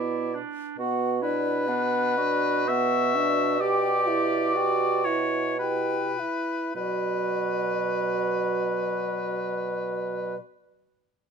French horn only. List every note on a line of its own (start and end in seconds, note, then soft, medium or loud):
0.00 0.43 B3 soft
0.79 1.24 B3 soft
1.22 1.70 D4 soft
1.68 2.19 B3 soft
2.18 2.68 D4 soft
2.68 3.17 B3 soft
3.15 3.61 D4 soft
3.61 4.09 G4 soft
4.07 4.56 E4 soft
4.55 5.07 G4 soft
5.06 5.59 E4 soft
5.59 6.20 G4 soft
6.19 6.75 E4 soft
6.75 10.36 F#3 soft